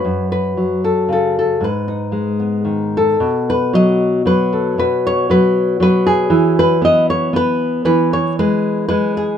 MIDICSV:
0, 0, Header, 1, 2, 480
1, 0, Start_track
1, 0, Tempo, 525394
1, 50, Time_signature, 3, 2, 24, 8
1, 3890, Tempo, 516796
1, 8645, End_track
2, 0, Start_track
2, 0, Title_t, "Nylon-string guitar"
2, 0, Program_c, 0, 24
2, 0, Note_on_c, 0, 54, 45
2, 0, Note_on_c, 0, 71, 73
2, 42, Note_on_c, 0, 42, 56
2, 280, Note_off_c, 0, 71, 0
2, 291, Note_on_c, 0, 71, 70
2, 512, Note_off_c, 0, 54, 0
2, 522, Note_on_c, 0, 54, 46
2, 764, Note_off_c, 0, 71, 0
2, 772, Note_on_c, 0, 69, 62
2, 992, Note_on_c, 0, 49, 47
2, 1006, Note_off_c, 0, 69, 0
2, 1028, Note_on_c, 0, 69, 64
2, 1254, Note_off_c, 0, 69, 0
2, 1268, Note_on_c, 0, 69, 61
2, 1463, Note_off_c, 0, 42, 0
2, 1467, Note_on_c, 0, 44, 52
2, 1475, Note_off_c, 0, 49, 0
2, 1479, Note_off_c, 0, 54, 0
2, 1493, Note_off_c, 0, 69, 0
2, 1500, Note_on_c, 0, 71, 57
2, 1717, Note_on_c, 0, 63, 36
2, 1936, Note_on_c, 0, 56, 46
2, 2190, Note_on_c, 0, 59, 36
2, 2417, Note_on_c, 0, 51, 46
2, 2710, Note_off_c, 0, 63, 0
2, 2714, Note_on_c, 0, 69, 73
2, 2889, Note_off_c, 0, 51, 0
2, 2892, Note_off_c, 0, 56, 0
2, 2897, Note_off_c, 0, 44, 0
2, 2925, Note_on_c, 0, 47, 68
2, 2942, Note_off_c, 0, 71, 0
2, 3195, Note_on_c, 0, 71, 85
2, 3411, Note_on_c, 0, 54, 59
2, 3424, Note_off_c, 0, 71, 0
2, 3427, Note_on_c, 0, 75, 96
2, 3665, Note_off_c, 0, 69, 0
2, 3884, Note_off_c, 0, 54, 0
2, 3888, Note_on_c, 0, 54, 61
2, 3895, Note_off_c, 0, 75, 0
2, 3899, Note_on_c, 0, 71, 90
2, 4140, Note_on_c, 0, 69, 44
2, 4339, Note_off_c, 0, 47, 0
2, 4347, Note_off_c, 0, 69, 0
2, 4366, Note_off_c, 0, 59, 0
2, 4376, Note_on_c, 0, 47, 72
2, 4377, Note_off_c, 0, 71, 0
2, 4389, Note_on_c, 0, 71, 88
2, 4641, Note_on_c, 0, 73, 97
2, 4852, Note_off_c, 0, 54, 0
2, 4855, Note_off_c, 0, 71, 0
2, 4855, Note_on_c, 0, 54, 60
2, 4865, Note_on_c, 0, 71, 91
2, 5319, Note_off_c, 0, 54, 0
2, 5323, Note_on_c, 0, 54, 63
2, 5331, Note_off_c, 0, 71, 0
2, 5337, Note_off_c, 0, 73, 0
2, 5345, Note_on_c, 0, 71, 99
2, 5569, Note_on_c, 0, 68, 93
2, 5773, Note_off_c, 0, 47, 0
2, 5786, Note_on_c, 0, 52, 75
2, 5812, Note_off_c, 0, 71, 0
2, 6043, Note_off_c, 0, 68, 0
2, 6057, Note_on_c, 0, 71, 93
2, 6262, Note_off_c, 0, 54, 0
2, 6265, Note_on_c, 0, 59, 60
2, 6286, Note_off_c, 0, 71, 0
2, 6296, Note_on_c, 0, 75, 96
2, 6524, Note_off_c, 0, 75, 0
2, 6529, Note_on_c, 0, 73, 91
2, 6740, Note_off_c, 0, 59, 0
2, 6744, Note_on_c, 0, 59, 64
2, 6760, Note_off_c, 0, 73, 0
2, 6773, Note_on_c, 0, 71, 100
2, 7195, Note_off_c, 0, 52, 0
2, 7216, Note_off_c, 0, 71, 0
2, 7225, Note_on_c, 0, 52, 66
2, 7230, Note_on_c, 0, 71, 86
2, 7470, Note_off_c, 0, 71, 0
2, 7489, Note_on_c, 0, 73, 86
2, 7517, Note_off_c, 0, 59, 0
2, 7723, Note_off_c, 0, 73, 0
2, 7728, Note_on_c, 0, 56, 60
2, 7729, Note_on_c, 0, 71, 85
2, 8176, Note_off_c, 0, 71, 0
2, 8187, Note_on_c, 0, 71, 82
2, 8194, Note_off_c, 0, 56, 0
2, 8198, Note_on_c, 0, 56, 57
2, 8441, Note_off_c, 0, 71, 0
2, 8453, Note_on_c, 0, 68, 72
2, 8645, Note_off_c, 0, 52, 0
2, 8645, Note_off_c, 0, 56, 0
2, 8645, Note_off_c, 0, 68, 0
2, 8645, End_track
0, 0, End_of_file